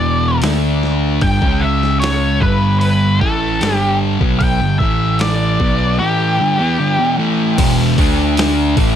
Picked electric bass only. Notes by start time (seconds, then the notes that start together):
Already playing: E1
0.42 D2
1.22 G1
1.42 C#2
2.41 G1
3.21 A1
3.61 G1
4.21 B1
4.61 G1
4.80 A1
5.60 B1
7.58 E1
7.98 D2
8.77 A1